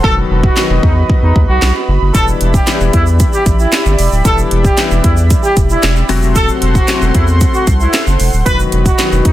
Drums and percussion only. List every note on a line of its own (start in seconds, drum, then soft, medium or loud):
0.04 kick loud
0.43 kick loud
0.57 snare medium
0.57 clap loud
0.83 kick medium
1.10 kick loud
1.36 kick loud
1.62 snare loud
1.62 clap loud
2.15 kick loud
2.15 closed hi-hat medium
2.15 shaker medium
2.28 shaker medium
2.41 closed hi-hat medium
2.54 kick loud
2.54 shaker soft
2.67 snare medium
2.67 clap loud
2.67 closed hi-hat loud
2.67 shaker medium
2.80 shaker soft
2.93 kick loud
2.93 closed hi-hat medium
3.07 shaker soft
3.20 kick loud
3.20 closed hi-hat medium
3.20 shaker medium
3.33 shaker medium
3.46 kick loud
3.46 closed hi-hat medium
3.46 shaker medium
3.59 shaker soft
3.72 snare loud
3.72 clap loud
3.72 closed hi-hat medium
3.72 shaker medium
3.86 shaker medium
3.99 open hi-hat medium
3.99 shaker medium
4.12 shaker soft
4.25 kick loud
4.25 closed hi-hat loud
4.25 shaker medium
4.38 shaker medium
4.51 closed hi-hat medium
4.65 kick loud
4.65 shaker medium
4.78 snare medium
4.78 clap loud
4.78 closed hi-hat loud
4.78 shaker medium
4.91 shaker soft
5.04 kick medium
5.04 closed hi-hat medium
5.17 shaker medium
5.30 kick loud
5.30 closed hi-hat medium
5.30 shaker medium
5.44 shaker medium
5.57 kick loud
5.57 closed hi-hat medium
5.57 shaker medium
5.70 shaker soft
5.83 snare loud
5.83 clap loud
5.83 closed hi-hat medium
5.83 shaker medium
5.96 shaker soft
6.09 open hi-hat medium
6.09 shaker medium
6.22 shaker medium
6.36 kick loud
6.36 closed hi-hat medium
6.36 shaker medium
6.48 shaker medium
6.62 closed hi-hat medium
6.75 kick loud
6.75 shaker medium
6.88 snare medium
6.88 clap loud
6.88 closed hi-hat loud
6.88 shaker medium
7.01 shaker soft
7.15 kick medium
7.15 closed hi-hat medium
7.28 shaker medium
7.41 kick loud
7.41 closed hi-hat loud
7.41 shaker medium
7.54 shaker medium
7.67 kick loud
7.67 closed hi-hat medium
7.67 shaker medium
7.80 shaker soft
7.93 snare loud
7.93 clap loud
7.93 closed hi-hat medium
7.93 shaker medium
8.07 shaker medium
8.20 open hi-hat medium
8.20 shaker medium
8.33 shaker medium
8.46 kick loud
8.46 closed hi-hat loud
8.46 shaker medium
8.59 shaker medium
8.72 closed hi-hat medium
8.86 kick loud
8.86 closed hi-hat medium
8.86 shaker medium
8.99 snare medium
8.99 clap loud
8.99 closed hi-hat loud
8.99 shaker medium
9.12 shaker soft
9.25 kick medium
9.25 closed hi-hat medium